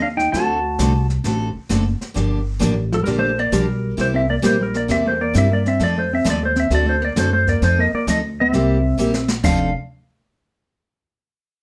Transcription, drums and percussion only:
0.19 snare
0.33 brush sweep, kick, snare
0.79 kick, snare, hi-hat pedal
1.10 snare
1.24 brush sweep, kick, snare
1.70 kick, snare, hi-hat pedal
2.01 snare
2.15 brush sweep, kick, snare
2.61 kick, snare, hi-hat pedal
2.92 snare
3.07 brush sweep, kick, snare
3.52 kick, snare, hi-hat pedal
3.98 brush sweep, kick, snare
4.43 kick, snare, hi-hat pedal
4.74 snare
4.89 brush sweep, kick, snare
5.34 kick, snare, hi-hat pedal
5.66 snare
5.80 brush sweep, kick, snare
6.25 kick, snare, hi-hat pedal
6.56 snare
6.70 brush sweep, kick, snare
7.16 kick, snare, hi-hat pedal
7.47 kick, snare
7.62 brush sweep, kick, snare
8.07 kick, snare, hi-hat pedal
8.53 brush sweep, kick, snare
8.99 hi-hat pedal
9.14 snare
9.28 snare
9.44 kick, snare, crash

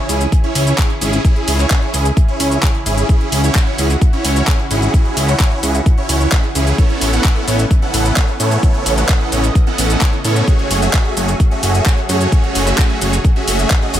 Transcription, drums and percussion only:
0.09 open hi-hat, shaker
0.21 closed hi-hat, shaker
0.32 kick, closed hi-hat, shaker
0.44 closed hi-hat
0.55 open hi-hat, shaker
0.67 closed hi-hat, shaker
0.78 kick, clap, closed hi-hat, shaker
0.90 closed hi-hat
1.01 open hi-hat, shaker
1.13 closed hi-hat, shaker
1.25 kick, closed hi-hat, shaker
1.36 closed hi-hat
1.48 open hi-hat, shaker
1.59 clap, closed hi-hat, shaker
1.70 kick, clap, closed hi-hat, shaker
1.82 closed hi-hat
1.94 open hi-hat, shaker
2.05 closed hi-hat, shaker
2.17 kick, closed hi-hat, shaker
2.28 closed hi-hat
2.40 open hi-hat, shaker
2.51 closed hi-hat, shaker
2.63 kick, clap, closed hi-hat, shaker
2.75 closed hi-hat
2.86 open hi-hat, shaker
2.98 closed hi-hat, shaker
3.09 kick, closed hi-hat, shaker
3.21 closed hi-hat
3.32 open hi-hat, shaker
3.44 closed hi-hat, shaker
3.55 kick, clap, closed hi-hat, shaker
3.67 closed hi-hat
3.78 open hi-hat, shaker
3.90 closed hi-hat, shaker
4.01 kick, closed hi-hat, shaker
4.13 closed hi-hat
4.25 open hi-hat, shaker
4.36 closed hi-hat, shaker
4.47 kick, clap, closed hi-hat, shaker
4.59 closed hi-hat
4.71 open hi-hat, shaker
4.82 closed hi-hat, shaker
4.94 kick, closed hi-hat, shaker
5.05 closed hi-hat
5.17 open hi-hat, shaker
5.28 clap, closed hi-hat, shaker
5.40 kick, clap, closed hi-hat, shaker
5.51 closed hi-hat
5.63 open hi-hat, shaker
5.75 closed hi-hat, shaker
5.86 kick, closed hi-hat, shaker
5.98 closed hi-hat
6.09 open hi-hat, shaker
6.21 closed hi-hat, shaker
6.32 kick, clap, closed hi-hat, shaker
6.44 closed hi-hat
6.55 open hi-hat, shaker
6.67 closed hi-hat, shaker
6.78 kick, closed hi-hat, shaker
6.90 closed hi-hat
7.01 open hi-hat, shaker
7.13 closed hi-hat, shaker
7.24 kick, clap, closed hi-hat, shaker
7.36 closed hi-hat
7.48 open hi-hat, shaker
7.59 closed hi-hat, shaker
7.71 kick, closed hi-hat, shaker
7.82 closed hi-hat
7.94 open hi-hat, shaker
8.05 closed hi-hat, shaker
8.17 kick, clap, closed hi-hat, shaker
8.28 closed hi-hat
8.40 open hi-hat, shaker
8.51 closed hi-hat, shaker
8.63 kick, closed hi-hat, shaker
8.74 closed hi-hat
8.86 open hi-hat, shaker
8.97 clap, closed hi-hat, shaker
9.09 kick, clap, closed hi-hat, shaker
9.21 closed hi-hat
9.32 open hi-hat, shaker
9.44 closed hi-hat, shaker
9.55 kick, closed hi-hat, shaker
9.67 closed hi-hat
9.78 open hi-hat, shaker
9.90 closed hi-hat, shaker
10.01 kick, clap, closed hi-hat, shaker
10.13 closed hi-hat
10.24 open hi-hat, shaker
10.36 closed hi-hat, shaker
10.48 kick, closed hi-hat, shaker
10.59 closed hi-hat
10.71 open hi-hat, shaker
10.82 closed hi-hat, shaker
10.93 kick, clap, closed hi-hat, shaker
11.05 closed hi-hat
11.17 open hi-hat, shaker
11.28 closed hi-hat, shaker
11.40 kick, closed hi-hat, shaker
11.51 closed hi-hat
11.63 open hi-hat, shaker
11.74 closed hi-hat, shaker
11.86 kick, clap, closed hi-hat, shaker
11.98 closed hi-hat
12.09 open hi-hat, shaker
12.21 closed hi-hat, shaker
12.32 kick, closed hi-hat, shaker
12.44 closed hi-hat
12.55 open hi-hat, shaker
12.67 clap, closed hi-hat, shaker
12.78 kick, clap, closed hi-hat, shaker
12.90 closed hi-hat
13.01 open hi-hat, shaker
13.13 closed hi-hat, shaker
13.24 kick, closed hi-hat, shaker
13.36 closed hi-hat
13.48 open hi-hat, shaker
13.59 closed hi-hat, shaker
13.70 kick, clap, closed hi-hat, shaker
13.82 closed hi-hat
13.94 open hi-hat, shaker

